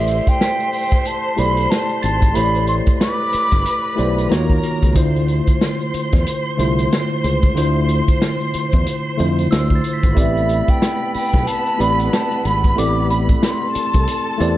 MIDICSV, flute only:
0, 0, Header, 1, 2, 480
1, 0, Start_track
1, 0, Key_signature, 0, "minor"
1, 0, Tempo, 650759
1, 1738, Time_signature, 4, 2, 24, 8
1, 10751, End_track
2, 0, Start_track
2, 0, Title_t, "Flute"
2, 0, Program_c, 0, 73
2, 0, Note_on_c, 0, 76, 73
2, 211, Note_on_c, 0, 79, 78
2, 222, Note_off_c, 0, 76, 0
2, 539, Note_off_c, 0, 79, 0
2, 543, Note_on_c, 0, 79, 74
2, 790, Note_on_c, 0, 81, 81
2, 801, Note_off_c, 0, 79, 0
2, 1025, Note_on_c, 0, 83, 92
2, 1036, Note_off_c, 0, 81, 0
2, 1257, Note_on_c, 0, 81, 80
2, 1269, Note_off_c, 0, 83, 0
2, 1498, Note_off_c, 0, 81, 0
2, 1502, Note_on_c, 0, 81, 84
2, 1734, Note_on_c, 0, 83, 94
2, 1745, Note_off_c, 0, 81, 0
2, 1976, Note_off_c, 0, 83, 0
2, 1980, Note_on_c, 0, 84, 88
2, 2034, Note_off_c, 0, 84, 0
2, 2223, Note_on_c, 0, 86, 102
2, 3151, Note_off_c, 0, 86, 0
2, 7511, Note_on_c, 0, 76, 80
2, 7890, Note_on_c, 0, 79, 75
2, 7901, Note_off_c, 0, 76, 0
2, 8226, Note_off_c, 0, 79, 0
2, 8231, Note_on_c, 0, 79, 78
2, 8462, Note_on_c, 0, 81, 90
2, 8473, Note_off_c, 0, 79, 0
2, 8707, Note_on_c, 0, 83, 87
2, 8718, Note_off_c, 0, 81, 0
2, 8942, Note_off_c, 0, 83, 0
2, 8947, Note_on_c, 0, 81, 84
2, 9194, Note_on_c, 0, 83, 86
2, 9205, Note_off_c, 0, 81, 0
2, 9430, Note_on_c, 0, 86, 87
2, 9441, Note_off_c, 0, 83, 0
2, 9659, Note_off_c, 0, 86, 0
2, 9664, Note_on_c, 0, 83, 82
2, 9718, Note_off_c, 0, 83, 0
2, 9901, Note_on_c, 0, 84, 86
2, 10751, Note_off_c, 0, 84, 0
2, 10751, End_track
0, 0, End_of_file